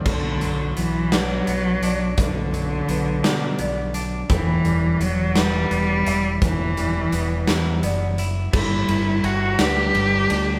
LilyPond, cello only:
\new Staff \with { instrumentName = "Cello" } { \clef bass \time 6/8 \key b \phrygian \tempo 4. = 57 d4 e8 fis4. | d2~ d8 r8 | e4 fis8 g4. | e2 r4 |
e'4 fis'8 g'4. | }